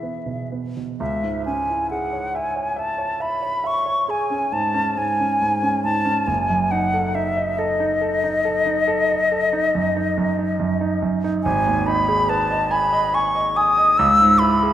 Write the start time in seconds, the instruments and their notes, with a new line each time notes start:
Already playing: grand piano E2 B2 B3 E4 G#4, flute E5
0.03 grand piano B3
0.26 grand piano B2
0.52 grand piano B3
0.77 grand piano B2
1.00 grand piano C#2, flute E5
1.23 grand piano G#2
1.46 grand piano C#4, flute G#5
1.69 grand piano E4
1.90 grand piano G#4, flute F#5
2.13 grand piano C#5
2.35 grand piano E5, flute G#5
2.56 grand piano C#5
2.76 grand piano E5, flute A5
2.98 grand piano C#5
3.20 grand piano E5, flute B5
3.42 grand piano C#5
3.64 grand piano E5, flute C#6
3.86 grand piano C#5
4.08 grand piano G#4, flute G#5
4.30 grand piano C#4
4.52 grand piano G#2, flute A5
4.74 grand piano C#4
4.96 grand piano G#2, flute G#5
5.20 grand piano C#4
5.42 grand piano G#2
5.63 grand piano C#4
5.84 grand piano G#2, flute A5
6.05 grand piano C#4
6.27 grand piano F#1, flute G#5
6.50 grand piano F#2
6.71 grand piano D#4, flute F#5
6.94 grand piano A4
7.15 grand piano D#4, flute E5
7.37 grand piano D#5
7.58 grand piano A4, flute D#5
7.80 grand piano D#4
8.01 grand piano A4
8.24 grand piano D#4
8.45 grand piano A4
8.66 grand piano D#4
8.88 grand piano A4
9.10 grand piano D#5
9.32 grand piano A4
9.53 grand piano D#4
9.75 grand piano F#2
9.96 grand piano D#4
10.18 grand piano F#2
10.39 grand piano D#4
10.60 grand piano F#2
10.81 grand piano D#4
11.02 grand piano F#2
11.24 grand piano D#4
11.43 grand piano G#1, flute G#5
11.66 grand piano D#2
11.86 grand piano D#4, flute B5
12.09 grand piano G#4
12.29 grand piano B4, flute A5
12.51 grand piano D#5
12.71 grand piano G#5, flute B5
12.93 grand piano D#5
13.14 grand piano G#5, flute C#6
13.35 grand piano D#5
13.56 grand piano G#5, flute D#6
13.78 grand piano D#5
13.98 grand piano C#2, flute E6
14.21 grand piano G#2
14.39 grand piano E4, flute B5
14.63 grand piano G#4